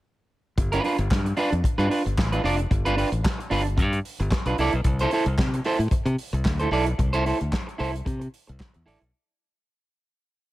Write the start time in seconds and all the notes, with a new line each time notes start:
0.57 G1, muted clean electric guitar stroke, kick, closed hi-hat
0.72 D4 F4 B4, closed hi-hat
0.83 D4 F4 B4, open hi-hat
0.98 G1, muted clean electric guitar stroke, closed hi-hat
1.10 G2, muted clean electric guitar stroke, kick, snare, clap
1.26 muted clean electric guitar stroke, closed hi-hat
1.37 D4 F4 B4, open hi-hat
1.52 F2, muted clean electric guitar stroke, closed hi-hat
1.64 muted clean electric guitar stroke, kick, closed hi-hat
1.78 G2 D4 F4 B4, closed hi-hat
1.89 D4 F4 B4, open hi-hat
2.05 G1, muted clean electric guitar stroke, closed hi-hat
2.18 A1, muted clean electric guitar stroke, kick, snare, clap
2.32 D4 F4 B4, closed hi-hat
2.44 F1 D4 F4 D5, open hi-hat
2.58 muted clean electric guitar stroke, closed hi-hat
2.71 G1, muted clean electric guitar stroke, kick, closed hi-hat
2.85 D4 F4 B4, closed hi-hat
2.96 D4 F4 B4, open hi-hat
3.12 A1, muted clean electric guitar stroke, closed hi-hat
3.24 muted clean electric guitar stroke, kick, snare, clap
3.38 muted clean electric guitar stroke, closed hi-hat
3.50 G1 D4 F4 B4, open hi-hat
3.64 muted clean electric guitar stroke, closed hi-hat
3.77 G2, muted clean electric guitar stroke, kick, closed hi-hat
3.92 muted clean electric guitar stroke, closed hi-hat
4.05 open hi-hat
4.20 G1, muted clean electric guitar stroke, closed hi-hat
4.31 muted clean electric guitar stroke, kick, snare, clap
4.46 B1 D4 F4 B4, closed hi-hat
4.58 C2 E4 A4 D5, open hi-hat
4.73 B1, muted clean electric guitar stroke, closed hi-hat
4.84 C2, muted clean electric guitar stroke, kick, closed hi-hat
4.99 E4 A4 C5, closed hi-hat
5.11 E4 A4 C5, open hi-hat
5.26 C2, muted clean electric guitar stroke, closed hi-hat
5.38 C3, muted clean electric guitar stroke, kick, snare, clap
5.54 muted clean electric guitar stroke, closed hi-hat
5.64 E4 A4 C5, open hi-hat
5.79 A2, muted clean electric guitar stroke, closed hi-hat
5.91 muted clean electric guitar stroke, muted fingered electric bass stroke, kick, closed hi-hat
6.05 C3, muted clean electric guitar stroke, closed hi-hat
6.18 open hi-hat
6.33 C2, muted clean electric guitar stroke, closed hi-hat
6.44 D2, muted clean electric guitar stroke, kick, snare, clap
6.59 E4 A4 C5, closed hi-hat
6.71 B1 E4 A4 D5, open hi-hat
6.86 muted clean electric guitar stroke, closed hi-hat
6.98 C2, muted clean electric guitar stroke, kick, closed hi-hat
7.13 E4 A4 C5, closed hi-hat
7.26 E4 A4 C5, open hi-hat
7.40 D2, muted clean electric guitar stroke, closed hi-hat
7.52 muted clean electric guitar stroke, kick, snare, clap
7.67 muted clean electric guitar stroke, closed hi-hat
7.78 C2 E4 A4 C5, open hi-hat
7.93 muted clean electric guitar stroke, closed hi-hat
8.05 C3, muted clean electric guitar stroke, kick, closed hi-hat
8.20 muted clean electric guitar stroke, closed hi-hat
8.34 open hi-hat
8.47 C2, muted clean electric guitar stroke, closed hi-hat
8.60 kick, snare, clap
8.73 E2, muted clean electric guitar stroke, closed hi-hat
8.86 E4 A4 D5, open hi-hat
9.01 B1, muted clean electric guitar stroke